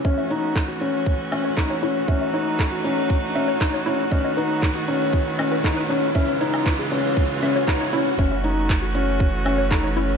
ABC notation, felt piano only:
X:1
M:4/4
L:1/8
Q:1/4=118
K:F#dor
V:1 name="Felt piano"
C D2 C2 C D C | C D2 C2 C D C | C D2 C2 C D C | C D2 C2 C D C |
C D2 C2 C D C |]